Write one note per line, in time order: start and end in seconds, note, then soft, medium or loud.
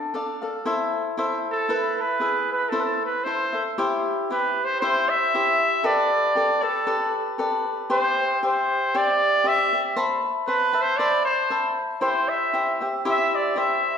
0.00 0.13 D4 medium
0.00 0.14 A4 medium
0.00 0.14 D5 medium
0.00 0.15 F5 medium
0.14 0.41 D4 soft
0.14 0.42 A4 medium
0.14 0.41 D5 medium
0.14 0.40 F5 medium
0.42 0.64 A4 soft
0.42 0.66 D5 soft
0.42 0.66 F5 soft
0.65 1.17 E4 medium
0.65 1.17 A4 medium
0.65 1.17 C5 medium
0.65 1.18 E5 medium
1.17 1.68 E4 medium
1.17 1.68 A4 medium
1.17 1.69 C5 medium
1.17 1.70 E5 medium
1.51 2.03 A4 medium
1.69 2.20 E4 medium
1.69 2.20 A4 medium
1.69 2.20 B4 medium
1.69 2.21 E5 medium
2.01 2.52 B4 medium
2.20 2.72 E4 medium
2.20 2.72 G#4 soft
2.20 2.72 B4 medium
2.20 2.73 E5 soft
2.52 2.71 B4 medium
2.70 3.26 E4 medium
2.70 2.82 A4 medium
2.70 3.26 A4 medium
2.70 3.27 C5 medium
2.70 3.27 E5 medium
2.80 3.05 A4 medium
2.80 2.85 B4 medium
3.06 3.25 B4 medium
3.24 3.54 E4 soft
3.24 3.53 A4 soft
3.24 3.65 C5 loud
3.24 3.53 C5 medium
3.24 3.52 E5 medium
3.53 3.78 A4 soft
3.53 3.78 C5 soft
3.53 3.78 E5 soft
3.78 4.29 E4 medium
3.78 4.31 G4 medium
3.78 4.31 C5 medium
3.78 4.31 E5 medium
4.31 4.81 E4 medium
4.31 4.82 G4 medium
4.31 4.66 B4 medium
4.31 4.82 E5 medium
4.65 4.80 C5 medium
4.81 5.33 E4 medium
4.81 5.34 G4 medium
4.81 5.11 C5 loud
4.81 5.34 C5 medium
4.81 5.34 E5 medium
5.09 5.87 E5 loud
5.35 5.83 E4 medium
5.35 5.83 G4 medium
5.35 5.84 C5 medium
5.35 5.84 E5 medium
5.84 6.35 G4 medium
5.84 6.35 A4 medium
5.84 6.36 B4 medium
5.84 6.38 D5 medium
5.84 6.65 D5 loud
6.35 6.62 G4 soft
6.35 6.62 A4 soft
6.35 6.61 B4 medium
6.35 6.61 D5 medium
6.62 7.14 A4 medium
6.62 6.86 A4 soft
6.62 6.86 B4 soft
6.62 6.86 D5 soft
6.87 7.38 G4 medium
6.87 7.38 A4 medium
6.87 7.38 B4 medium
6.87 7.39 D5 medium
7.38 7.90 G4 soft
7.38 7.89 A4 medium
7.38 7.91 B4 medium
7.38 7.91 D5 medium
7.90 8.42 G4 medium
7.90 8.43 C5 medium
7.90 8.40 C5 loud
7.90 8.43 D5 medium
7.90 8.43 E5 medium
8.43 8.93 G4 medium
8.43 8.94 C5 soft
8.43 8.98 C5 medium
8.43 8.94 D5 medium
8.43 8.94 E5 medium
8.95 9.43 G4 medium
8.95 9.44 C5 medium
8.95 9.45 D5 medium
8.95 9.49 D5 loud
8.95 9.45 E5 medium
9.44 9.72 G4 medium
9.44 9.72 C5 soft
9.44 9.71 D5 medium
9.44 9.73 E5 medium
9.44 9.86 E5 loud
9.73 9.95 C5 soft
9.73 9.97 D5 soft
9.73 9.96 E5 soft
9.96 10.47 C5 medium
9.96 10.48 E5 medium
9.96 10.48 A5 medium
9.96 10.48 B5 loud
10.48 10.83 B4 medium
10.48 10.74 C5 medium
10.48 10.73 E5 medium
10.48 10.73 A5 medium
10.48 10.72 B5 medium
10.73 10.99 E5 soft
10.73 10.98 A5 soft
10.73 10.98 B5 soft
10.82 10.99 C5 loud
10.97 11.50 C5 medium
10.97 11.24 D5 loud
10.97 11.50 E5 medium
10.97 11.50 A5 medium
10.97 11.50 B5 medium
11.25 11.74 C5 medium
11.50 12.01 C5 soft
11.50 12.01 E5 medium
11.50 12.01 A5 medium
11.50 12.02 B5 medium
12.01 12.52 E4 medium
12.01 12.53 G4 medium
12.01 12.30 C5 medium
12.01 12.54 C5 medium
12.01 12.54 E5 medium
12.29 12.81 E5 medium
12.53 12.81 E4 soft
12.53 12.81 G4 medium
12.53 12.80 C5 medium
12.53 12.79 E5 medium
12.81 13.04 G4 soft
12.81 13.05 C5 soft
12.81 13.05 E5 soft
13.05 13.54 E4 medium
13.05 13.56 G4 medium
13.05 13.56 C5 medium
13.05 13.56 E5 medium
13.10 13.37 E5 loud
13.35 13.60 D5 medium
13.56 13.98 E4 soft
13.56 13.98 G4 medium
13.56 13.98 C5 medium
13.56 13.98 E5 medium
13.56 13.97 E5 loud